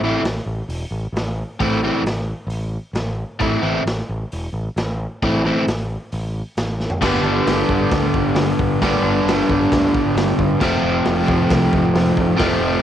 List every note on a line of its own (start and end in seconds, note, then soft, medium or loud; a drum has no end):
0.01 0.16 A1 medium
0.01 0.21 A2 medium
0.01 0.22 E3 medium
0.05 0.22 A3 medium
0.05 0.22 C4 loud
0.05 0.22 E4 medium
0.24 0.38 A1 medium
0.24 snare loud
0.24 open hi-hat medium
0.46 0.61 A1 medium
0.69 0.83 E1 medium
0.69 open hi-hat medium
0.91 1.06 A1 medium
1.12 1.42 A1 loud
1.12 open hi-hat medium
1.17 snare loud
1.60 1.89 A1 medium
1.60 1.78 A2 medium
1.60 1.79 E3 loud
1.60 1.79 A3 loud
1.60 1.80 C4 medium
1.60 1.79 E4 loud
1.60 kick loud
1.60 open hi-hat medium
1.83 2.01 A2 medium
1.83 2.02 E3 medium
1.83 2.02 A3 medium
1.83 2.02 C4 medium
1.83 2.02 E4 medium
2.02 2.32 A1 medium
2.02 open hi-hat medium
2.07 snare loud
2.47 2.76 A1 medium
2.47 open hi-hat medium
2.93 3.23 A1 medium
2.93 snare loud
2.93 open hi-hat soft
3.40 3.55 A1 medium
3.40 3.59 A2 medium
3.40 3.60 E3 loud
3.40 3.60 A3 loud
3.40 3.60 C4 medium
3.40 3.60 E4 medium
3.40 kick medium
3.40 open hi-hat soft
3.61 3.77 A1 medium
3.61 3.81 A2 medium
3.61 3.81 E3 medium
3.61 3.82 A3 medium
3.61 3.82 C4 medium
3.61 3.82 E4 loud
3.85 4.00 A1 medium
3.85 snare loud
3.85 open hi-hat medium
4.09 4.23 A1 loud
4.32 4.47 E1 loud
4.32 open hi-hat medium
4.53 4.67 A1 medium
4.76 5.05 A1 loud
4.76 snare loud
4.76 open hi-hat medium
5.22 5.50 A1 medium
5.22 5.41 A2 medium
5.22 5.41 E3 medium
5.22 5.42 A3 medium
5.22 5.42 C4 loud
5.22 5.42 E4 loud
5.22 kick medium
5.22 open hi-hat soft
5.44 5.63 A2 medium
5.44 5.63 E3 medium
5.44 5.64 A3 medium
5.44 5.64 C4 loud
5.44 5.64 E4 loud
5.67 5.95 A1 medium
5.67 snare loud
5.67 open hi-hat medium
6.12 6.41 A1 medium
6.12 open hi-hat medium
6.57 6.86 A1 medium
6.57 snare loud
6.57 open hi-hat soft
6.80 snare medium
6.90 floor tom medium
7.01 7.18 G1 medium
7.01 8.80 G2 medium
7.01 8.81 D3 loud
7.01 8.82 G3 loud
7.01 8.82 B3 loud
7.01 kick medium
7.01 snare loud
7.01 crash loud
7.05 8.82 D4 loud
7.23 7.40 G1 loud
7.46 7.63 G1 medium
7.46 snare loud
7.46 open hi-hat medium
7.68 7.85 G1 loud
7.68 kick loud
7.91 8.08 D2 loud
7.91 kick loud
7.91 snare loud
7.91 open hi-hat medium
8.14 8.31 G1 medium
8.14 kick loud
8.35 8.52 G1 loud
8.35 snare loud
8.35 open hi-hat medium
8.59 8.76 G1 medium
8.59 kick medium
8.81 8.98 G1 medium
8.81 10.60 G2 medium
8.81 10.61 D3 loud
8.81 10.61 G3 loud
8.81 10.61 B3 loud
8.81 10.62 D4 loud
8.81 kick loud
8.81 snare medium
8.81 open hi-hat medium
9.02 9.19 G1 medium
9.24 9.41 G1 medium
9.24 open hi-hat medium
9.29 snare loud
9.49 9.65 G1 loud
9.49 kick medium
9.72 9.88 D2 loud
9.72 kick loud
9.72 snare loud
9.72 open hi-hat medium
9.95 10.11 G1 medium
9.95 kick loud
10.15 10.32 G1 loud
10.15 snare loud
10.15 open hi-hat medium
10.38 10.55 G1 loud
10.38 kick medium
10.61 10.77 F1 medium
10.61 12.36 F2 medium
10.61 12.37 C3 loud
10.61 12.37 F3 medium
10.61 12.39 A3 loud
10.61 12.39 C4 loud
10.61 kick loud
10.61 snare loud
10.61 crash loud
10.83 11.00 F1 medium
11.05 11.23 F1 medium
11.05 snare loud
11.05 open hi-hat medium
11.27 11.44 F1 loud
11.27 kick loud
11.50 11.67 C2 loud
11.50 kick loud
11.50 snare loud
11.50 open hi-hat medium
11.73 11.90 F1 loud
11.73 kick loud
11.93 12.11 F1 loud
11.93 snare loud
11.93 open hi-hat medium
12.16 12.33 F1 loud
12.16 kick medium
12.37 12.56 F1 medium
12.37 12.82 F2 medium
12.37 12.82 C3 medium
12.37 12.82 F3 loud
12.37 12.82 A3 loud
12.37 12.82 C4 loud
12.37 kick loud
12.37 snare loud
12.37 open hi-hat medium
12.60 12.77 F1 medium